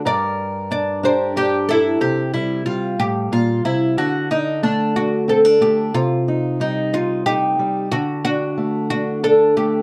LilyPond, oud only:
\new Staff \with { instrumentName = "Oud" } { \time 6/8 \key c \dorian \tempo 4. = 61 d''4 d''8 c''8 g'8 <e' a'>8 | g'8 e'8 f'8 g'8 f'8 e'8 | fis'8 ees'8 d'8 fis'8 a'8 g'8 | f'4 ees'8 f'8 g'4 |
fis'8 fis'4 fis'8 a'8 g'8 | }